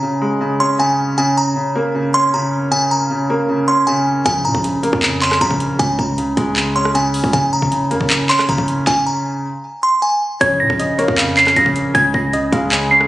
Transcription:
Already playing: C#3 A#5
0.03 C#3
0.21 G#3
0.41 C#3
0.60 C#4 C6
0.79 C#3 G#5
1.18 C#3 G#5
1.37 A#5
1.56 C#3
1.76 A#3
1.95 C#3
2.14 C#4 C6
2.34 C#3 A#5
2.71 C#3 G#5
2.91 A#5
3.11 C#3
3.30 A#3
3.49 C#3
3.68 C#4 C6
3.87 C#3 G#5
4.26 A#1 C#3 G#5, kick, closed hi-hat
4.45 A#2 A#5
4.55 A#1, kick
4.64 C#3, closed hi-hat
4.83 A#3, closed hi-hat
4.93 F2, kick
5.02 C#3, clap, closed hi-hat
5.22 C#4 C6, clap, closed hi-hat
5.32 cross-stick, clap
5.41 A#1 C#3 A#5, kick, closed hi-hat
5.51 kick
5.60 closed hi-hat
5.79 C#2 C#3 G#5, kick, closed hi-hat
5.99 C#2 A#5, kick
6.18 C#3, closed hi-hat
6.37 C#2 G#3, kick, closed hi-hat
6.56 C#3, clap, closed hi-hat
6.76 C#4 C6
6.85 cross-stick
6.94 C#3 G#5, closed hi-hat
7.14 open hi-hat
7.24 C#2, kick
7.33 F#1 C#3 G#5, kick, closed hi-hat
7.53 F1 A#5
7.62 F#1, kick
7.71 C#3, closed hi-hat
7.91 F#2 A#3, closed hi-hat
8.01 F#1, kick
8.10 C#3, clap, closed hi-hat
8.29 C#4 C6, clap, closed hi-hat
8.39 cross-stick, clap
8.49 F#1 C#3 A#5, kick, closed hi-hat
8.58 F#1, kick
8.68 closed hi-hat
8.87 G#5, kick, snare
9.06 A#5
9.83 C6
10.02 G#5
10.41 A#1 C#3 C#5 G#6, kick, closed hi-hat
10.60 A#2 A#6
10.70 A#1, kick
10.79 C#3 D#5, closed hi-hat
10.98 A#3 C#5, closed hi-hat
11.08 F2, kick
11.17 C#3 F5, clap, closed hi-hat
11.37 C#4 C7, clap, closed hi-hat
11.47 cross-stick, clap
11.56 A#1 C#3 A#6, kick, closed hi-hat
11.66 kick
11.76 closed hi-hat
11.94 C#2 C#3 G#5 G#6, kick, closed hi-hat
12.14 C#2 A#6, kick
12.33 C#3 D#5, closed hi-hat
12.52 C#2 G#3 F5, kick, closed hi-hat
12.71 C#3 G#5, clap, closed hi-hat
12.91 C#4 C7
13.01 cross-stick

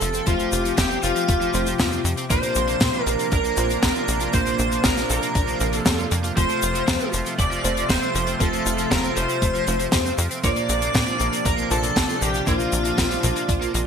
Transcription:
Already playing: C3 F3 F4 A4 A5
0.01 F1 F3, closed hi-hat, shaker
0.14 C4, closed hi-hat, shaker
0.26 F1 F3 A3 C4 F4 G4 C5 F5, kick, closed hi-hat, shaker
0.39 F3, closed hi-hat, shaker
0.52 F1 F4, closed hi-hat, shaker
0.65 F3, closed hi-hat, shaker
0.77 F1 F3 G4 G5, kick, snare, closed hi-hat, shaker
0.90 C4, shaker
1.03 F1 F3 F4 F5, closed hi-hat, shaker
1.16 F3, closed hi-hat, shaker
1.28 F1 A3, kick, closed hi-hat, shaker
1.41 F3, shaker
1.54 F1 F3 A3 C4 F4 C5, closed hi-hat, shaker
1.66 F3, closed hi-hat, shaker
1.79 F2 F3, kick, snare, closed hi-hat, shaker
1.92 C4, shaker
2.05 F2 F3, closed hi-hat, shaker
2.17 C4, closed hi-hat, shaker
2.30 A#1 A#2 F3 A#3 D4 F4 C5 C6, kick, closed hi-hat, shaker
2.43 A#3, closed hi-hat, shaker
2.55 A#1 A#4, closed hi-hat, shaker
2.68 A#3, closed hi-hat, shaker
2.80 A#2 A#3, kick, snare, closed hi-hat, shaker
2.93 F4, shaker
3.03 A#1 A#3 A#4 A#5, closed hi-hat, shaker
3.19 A#3, closed hi-hat, shaker
3.32 A#1 D4 A#4 A#5, kick, closed hi-hat, shaker
3.45 A#3, shaker
3.57 A#1 A#2 A#3 D4 F4 C5, closed hi-hat, shaker
3.70 A#3, closed hi-hat, shaker
3.83 A#1 A#3 A#4 A#5, kick, snare, closed hi-hat, shaker
3.95 F4, shaker
4.08 A#1 A#3, closed hi-hat, shaker
4.20 F4, closed hi-hat, shaker
4.33 A#1 A#2 A#3 D4 F4 C5 C6, kick, closed hi-hat, shaker
4.46 A#3, closed hi-hat, shaker
4.59 A#1 A#4, closed hi-hat, shaker
4.72 A#3, closed hi-hat, shaker
4.84 A#1 A#3 A#4 A#5, kick, snare, closed hi-hat, shaker
4.97 F4, snare, closed hi-hat, shaker
5.10 A#1 A#3 A#4 A#5, closed hi-hat, shaker
5.22 A#3, closed hi-hat, shaker
5.35 A#1 D4, kick, closed hi-hat, shaker
5.48 A#3, shaker
5.60 A#1 A#3, closed hi-hat, shaker
5.73 A#3 A4 A5, closed hi-hat, shaker
5.86 F2 A#3, kick, snare, closed hi-hat, shaker
5.99 F4, shaker
6.11 F2 A#3, closed hi-hat, shaker
6.24 F4, closed hi-hat, shaker
6.36 F1 C3 F3 A3 C4 F4 C5 C6, kick, closed hi-hat, shaker
6.49 F3, closed hi-hat, shaker
6.62 F1 F4, closed hi-hat, shaker
6.75 F3, closed hi-hat, shaker
6.87 F2 F3, kick, snare, closed hi-hat, shaker
7.00 C4, shaker
7.13 F1 F3, closed hi-hat, shaker
7.26 F3, closed hi-hat, shaker
7.39 F1 A3 D5 D6, kick, closed hi-hat, shaker
7.52 F3, shaker
7.64 F1 F3 A3 C4 F4 C5, closed hi-hat, shaker
7.77 F3, closed hi-hat, shaker
7.89 F1 F3 C5 C6, kick, snare, closed hi-hat, shaker
8.02 C4, shaker
8.15 F1 F3, closed hi-hat, shaker
8.27 C4, closed hi-hat, shaker
8.40 F1 F3 A3 C4 F4 A4 C5 A5, kick, closed hi-hat, shaker
8.53 F3, closed hi-hat, shaker
8.66 F1 F4, closed hi-hat, shaker
8.78 F3, closed hi-hat, shaker
8.91 F1 F3 A#4 A#5, kick, snare, closed hi-hat, shaker
9.04 C4, shaker
9.16 F1 F3 C5 C6, closed hi-hat, shaker
9.29 F3, closed hi-hat, shaker
9.42 F1 A3, kick, closed hi-hat, shaker
9.55 F3, shaker
9.67 F1 F3 A3 C4 F4 C5, closed hi-hat, shaker
9.79 F3, closed hi-hat, shaker
9.92 F2 F3, kick, snare, closed hi-hat, shaker
10.06 C4, shaker
10.18 F2 F3, closed hi-hat, shaker
10.31 C4, closed hi-hat, shaker
10.44 A#1 A#2 C3 F3 A#3 D4 F4 C5 D5 D6, kick, closed hi-hat, shaker
10.56 A#3, closed hi-hat, shaker
10.69 A#1 A#4, closed hi-hat, shaker
10.82 A#3, closed hi-hat, shaker
10.94 A#2 A#3, kick, snare, closed hi-hat, shaker
11.07 F4, shaker
11.19 A#1 A#3, closed hi-hat, shaker
11.32 A#3, closed hi-hat, shaker
11.45 A#1 D4 A#4 A#5, kick, closed hi-hat, shaker
11.58 A#3, shaker
11.70 A#1 A#2 A#3 D4 F4 A4 C5 A5, closed hi-hat, shaker
11.83 A#3, closed hi-hat, shaker
11.96 A#1 A#3, kick, snare, closed hi-hat, shaker
12.09 F4, shaker
12.21 A#1 A#3 G4 G5, closed hi-hat, shaker
12.34 F4, closed hi-hat, shaker
12.47 A#1 A#2 A#3 D4 F4 C5 F5, kick, closed hi-hat, shaker
12.60 A#3, closed hi-hat, shaker
12.72 A#1 A#4, closed hi-hat, shaker
12.85 A#3, closed hi-hat, shaker
12.98 A#1 A#3, kick, snare, closed hi-hat, shaker
13.10 F4, snare, shaker
13.23 A#1 A#3, closed hi-hat, mid tom, shaker
13.36 A#3, closed hi-hat, shaker
13.48 A#1 D4, kick, closed hi-hat, shaker
13.61 A#3, closed hi-hat, shaker
13.74 A#1 A#3, closed hi-hat, shaker

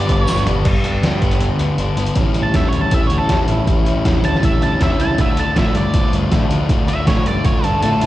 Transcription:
Already playing: G2 D3 G3 B3 D4 G4 D5 B5 D6
0.09 G1 G2 D3 G3 B3, kick, closed hi-hat
0.20 C#5
0.27 G1 D3 G3 B3 D4, snare, closed hi-hat, tambourine
0.37 closed hi-hat
0.46 G1 G3 B3 D4, closed hi-hat, floor tom
0.65 G1 G2 D3 G3 B3 D4 G4, kick, closed hi-hat, crash
0.84 G1, closed hi-hat
1.02 D2 D4, snare, closed hi-hat
1.22 G1 B3, kick, closed hi-hat
1.31 closed hi-hat
1.39 G1 D3, closed hi-hat
1.58 D2 B3, closed hi-hat
1.77 G1 D4, closed hi-hat
1.96 G1 B3, closed hi-hat
2.06 closed hi-hat
2.15 A1 A2 E3 G3 C#4 E4, kick, closed hi-hat
2.34 G3 C#4 E4, closed hi-hat
2.43 A5
2.53 E2 D3 E3 G3 C#4 E4 E5, kick, snare, closed hi-hat
2.68 D2 C#5
2.73 G3, closed hi-hat
2.81 A5
2.91 A1 A2 D3 E3 G3 C#4 E4 E5, kick, closed hi-hat
3.07 D2 E4 C#5, closed hi-hat
3.12 G3 C#4
3.18 A4
3.29 E2 E3 G3 C#4 E4, kick, snare, closed hi-hat
3.48 A1 G3 C#4 E4, closed hi-hat
3.67 A1 A2 E3 G3 C#4 E4, kick, closed hi-hat
3.85 G3 C#4 E4, closed hi-hat
4.05 E2 D3 E3 G3 C#4 E4, kick, snare, closed hi-hat
4.24 D2 G3 A5, closed hi-hat
4.34 snare
4.42 A1 A2 D3 E3 G3 C#4 E4 E5, kick, closed hi-hat
4.62 D2 G3 C#4 E4 A5, closed hi-hat
4.80 E2 E3 G3 C#4 E4 E5, kick, snare, closed hi-hat
4.99 C#2 G3 C#4 E4 A5, closed hi-hat
5.18 D2 D3 A3 D4 F4 E5, kick, closed hi-hat
5.36 A3 D4 F4 A5, closed hi-hat
5.55 A2 D3 F3 A3 D4 F4 E5, kick, snare, closed hi-hat
5.75 G2 A3 D5, closed hi-hat
5.94 D2 D3 F3 A3 D4 F4, kick, closed hi-hat
6.12 G2 A3 D4 F4, closed hi-hat
6.31 A2 D3 A3 D4 F4, kick, snare, closed hi-hat
6.50 D2 A3 D4 F4, closed hi-hat
6.69 D2 D3 A3 D4 F4, kick, closed hi-hat
6.88 A3 D4 F4 E5, closed hi-hat
7.06 A2 D3 F3 A3 D4 F4 C#5, kick, snare, closed hi-hat
7.26 G2 A3 D5, closed hi-hat
7.44 D2 D3 F3 A3 D4 F4 C#5, kick, closed hi-hat
7.64 G2 A3 D4 F4 A4, closed hi-hat
7.82 A2 D3 A3 D4 F4 A4, closed hi-hat
8.01 G#1 E4 F4, closed hi-hat

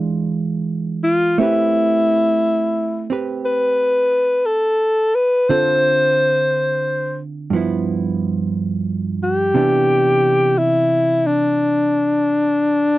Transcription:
Already playing: E3 G#3 D4 F4
1.03 F4
1.38 A3 C4 E4 G4
1.43 B4
3.10 C4 G4 B4
3.46 B4
4.46 A4
5.15 B4
5.49 D3 C4 F4 A4 C5
7.50 G2 F3
7.54 B3 E4
9.23 G4
9.54 C3 E3 B3 D4
10.58 E4
11.26 D4

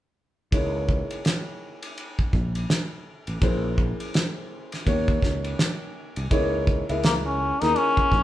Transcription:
0.52 C#2 A#3 D#4 E4 G#4 C#5, kick, ride
0.89 kick
1.11 ride
1.25 snare, hi-hat pedal, ride
1.83 ride
1.98 ride
2.19 kick
2.33 A#1, kick
2.55 ride
2.70 snare, hi-hat pedal, ride
3.27 A1, ride
3.41 A#1 A#3 C#4 E4 G#4 C5, kick, ride
3.78 kick
4.00 ride
4.14 snare, hi-hat pedal, ride
4.72 snare, ride
4.85 D#2 A#3 C#4 D#4 G4 C#5, kick, ride
5.08 kick
5.22 C#2, kick, snare
5.44 ride
5.59 snare, hi-hat pedal, ride
6.16 C2, ride
6.30 C#2 A#3 D#4 E4 G#4 C#5, kick, ride
6.67 kick
6.89 C#2 A#3 E4 G#4 D#5 E5, ride
7.03 A#3, snare, hi-hat pedal, ride
7.26 C#4
7.61 D#2 A#3 D#4 E4 G#4 A#4, snare, ride
7.76 C#4, ride
7.97 kick
8.12 A#1, kick

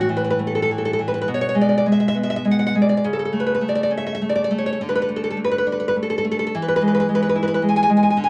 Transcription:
Already playing: A2
0.01 F#4
0.09 E3
0.17 B4
0.24 B4
0.30 B4
0.39 A3
0.47 A4
0.55 A4
0.62 A4
0.71 E3
0.78 A4
0.85 A4
0.93 A4
0.99 E3
1.08 B4
1.14 B4
1.21 B4
1.28 B2
1.34 C#5
1.41 C#5
1.49 C#5
1.55 G#3
1.61 D5
1.69 D5
1.78 D5
1.86 G#3
1.92 E5
2.00 E5
2.08 E5
2.15 B3
2.23 E5
2.30 E5
2.36 E5
2.45 G#3
2.51 F#5
2.59 F#5
2.66 F#5
2.75 G#3
2.82 D5
2.89 D5
2.97 D5
3.04 C#3
3.13 A4
3.19 A4
3.25 A4
3.33 A3
3.40 B4
3.47 B4
3.55 B4
3.61 A3
3.69 D5
3.75 D5
3.83 D5
3.91 C#4
3.98 E5
4.07 E5
4.15 E5
4.22 A3
4.29 D5
4.35 D5
4.44 D5
4.51 A3
4.58 C#5
4.66 C#5
4.73 C#5
4.81 D3
4.89 B4
4.95 B4
5.02 B4
5.09 A3
5.16 A4
5.24 A4
5.30 A4
5.37 A3
5.44 B4
5.51 B4
5.58 B4
5.67 D4
5.72 B4
5.80 B4
5.88 B4
5.96 A3
6.03 A4
6.10 A4
6.18 A4
6.25 A3
6.31 A4
6.39 A4
6.47 A4
6.55 E3
6.62 B4
6.68 B4
6.76 B4
6.81 G#3
6.88 B4
6.95 B4
7.00 B4
7.09 G#3
7.15 B4
7.23 B4
7.29 B4
7.36 E4
7.43 B4
7.48 B4
7.54 B4
7.62 G#3
7.69 G#5
7.76 G#5
7.83 G#5
7.90 G#3
7.97 G#5
8.03 G#5
8.10 G#5
8.17 D3
8.24 G#5

